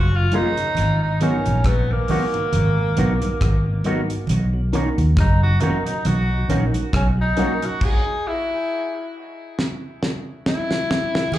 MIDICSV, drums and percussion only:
0, 0, Header, 1, 2, 480
1, 0, Start_track
1, 0, Tempo, 881057
1, 418, Time_signature, 4, 2, 24, 8
1, 6202, End_track
2, 0, Start_track
2, 0, Title_t, "Drums"
2, 172, Note_on_c, 9, 42, 74
2, 175, Note_on_c, 9, 63, 68
2, 226, Note_off_c, 9, 42, 0
2, 229, Note_off_c, 9, 63, 0
2, 313, Note_on_c, 9, 42, 52
2, 367, Note_off_c, 9, 42, 0
2, 408, Note_on_c, 9, 64, 59
2, 417, Note_on_c, 9, 42, 88
2, 462, Note_off_c, 9, 64, 0
2, 472, Note_off_c, 9, 42, 0
2, 657, Note_on_c, 9, 42, 71
2, 661, Note_on_c, 9, 64, 59
2, 712, Note_off_c, 9, 42, 0
2, 715, Note_off_c, 9, 64, 0
2, 793, Note_on_c, 9, 42, 55
2, 848, Note_off_c, 9, 42, 0
2, 894, Note_on_c, 9, 42, 81
2, 896, Note_on_c, 9, 36, 111
2, 901, Note_on_c, 9, 63, 48
2, 903, Note_on_c, 9, 37, 107
2, 949, Note_off_c, 9, 42, 0
2, 950, Note_off_c, 9, 36, 0
2, 956, Note_off_c, 9, 63, 0
2, 957, Note_off_c, 9, 37, 0
2, 1133, Note_on_c, 9, 46, 54
2, 1142, Note_on_c, 9, 64, 69
2, 1188, Note_off_c, 9, 46, 0
2, 1197, Note_off_c, 9, 64, 0
2, 1274, Note_on_c, 9, 42, 59
2, 1328, Note_off_c, 9, 42, 0
2, 1376, Note_on_c, 9, 64, 69
2, 1377, Note_on_c, 9, 42, 90
2, 1430, Note_off_c, 9, 64, 0
2, 1431, Note_off_c, 9, 42, 0
2, 1616, Note_on_c, 9, 64, 69
2, 1617, Note_on_c, 9, 42, 82
2, 1670, Note_off_c, 9, 64, 0
2, 1671, Note_off_c, 9, 42, 0
2, 1752, Note_on_c, 9, 42, 51
2, 1754, Note_on_c, 9, 63, 46
2, 1807, Note_off_c, 9, 42, 0
2, 1809, Note_off_c, 9, 63, 0
2, 1858, Note_on_c, 9, 36, 98
2, 1858, Note_on_c, 9, 42, 84
2, 1859, Note_on_c, 9, 63, 45
2, 1863, Note_on_c, 9, 37, 104
2, 1912, Note_off_c, 9, 36, 0
2, 1912, Note_off_c, 9, 42, 0
2, 1913, Note_off_c, 9, 63, 0
2, 1918, Note_off_c, 9, 37, 0
2, 2094, Note_on_c, 9, 42, 71
2, 2095, Note_on_c, 9, 63, 69
2, 2148, Note_off_c, 9, 42, 0
2, 2150, Note_off_c, 9, 63, 0
2, 2233, Note_on_c, 9, 42, 56
2, 2288, Note_off_c, 9, 42, 0
2, 2327, Note_on_c, 9, 64, 63
2, 2339, Note_on_c, 9, 42, 94
2, 2382, Note_off_c, 9, 64, 0
2, 2393, Note_off_c, 9, 42, 0
2, 2579, Note_on_c, 9, 42, 72
2, 2579, Note_on_c, 9, 64, 59
2, 2633, Note_off_c, 9, 42, 0
2, 2633, Note_off_c, 9, 64, 0
2, 2714, Note_on_c, 9, 42, 54
2, 2768, Note_off_c, 9, 42, 0
2, 2816, Note_on_c, 9, 36, 118
2, 2817, Note_on_c, 9, 42, 82
2, 2818, Note_on_c, 9, 63, 48
2, 2825, Note_on_c, 9, 37, 104
2, 2870, Note_off_c, 9, 36, 0
2, 2871, Note_off_c, 9, 42, 0
2, 2872, Note_off_c, 9, 63, 0
2, 2879, Note_off_c, 9, 37, 0
2, 3053, Note_on_c, 9, 42, 70
2, 3062, Note_on_c, 9, 64, 67
2, 3107, Note_off_c, 9, 42, 0
2, 3117, Note_off_c, 9, 64, 0
2, 3195, Note_on_c, 9, 42, 55
2, 3249, Note_off_c, 9, 42, 0
2, 3295, Note_on_c, 9, 42, 89
2, 3300, Note_on_c, 9, 64, 69
2, 3350, Note_off_c, 9, 42, 0
2, 3354, Note_off_c, 9, 64, 0
2, 3539, Note_on_c, 9, 64, 65
2, 3540, Note_on_c, 9, 42, 82
2, 3593, Note_off_c, 9, 64, 0
2, 3594, Note_off_c, 9, 42, 0
2, 3673, Note_on_c, 9, 42, 56
2, 3679, Note_on_c, 9, 63, 49
2, 3727, Note_off_c, 9, 42, 0
2, 3733, Note_off_c, 9, 63, 0
2, 3776, Note_on_c, 9, 42, 87
2, 3777, Note_on_c, 9, 36, 98
2, 3779, Note_on_c, 9, 63, 47
2, 3782, Note_on_c, 9, 37, 104
2, 3831, Note_off_c, 9, 36, 0
2, 3831, Note_off_c, 9, 42, 0
2, 3834, Note_off_c, 9, 63, 0
2, 3836, Note_off_c, 9, 37, 0
2, 4013, Note_on_c, 9, 42, 72
2, 4019, Note_on_c, 9, 63, 70
2, 4068, Note_off_c, 9, 42, 0
2, 4074, Note_off_c, 9, 63, 0
2, 4153, Note_on_c, 9, 42, 55
2, 4208, Note_off_c, 9, 42, 0
2, 4256, Note_on_c, 9, 36, 106
2, 4257, Note_on_c, 9, 49, 91
2, 4311, Note_off_c, 9, 36, 0
2, 4312, Note_off_c, 9, 49, 0
2, 5223, Note_on_c, 9, 38, 60
2, 5277, Note_off_c, 9, 38, 0
2, 5462, Note_on_c, 9, 38, 72
2, 5517, Note_off_c, 9, 38, 0
2, 5700, Note_on_c, 9, 38, 89
2, 5755, Note_off_c, 9, 38, 0
2, 5833, Note_on_c, 9, 38, 87
2, 5887, Note_off_c, 9, 38, 0
2, 5943, Note_on_c, 9, 38, 104
2, 5997, Note_off_c, 9, 38, 0
2, 6075, Note_on_c, 9, 38, 93
2, 6130, Note_off_c, 9, 38, 0
2, 6167, Note_on_c, 9, 64, 67
2, 6175, Note_on_c, 9, 49, 107
2, 6202, Note_off_c, 9, 49, 0
2, 6202, Note_off_c, 9, 64, 0
2, 6202, End_track
0, 0, End_of_file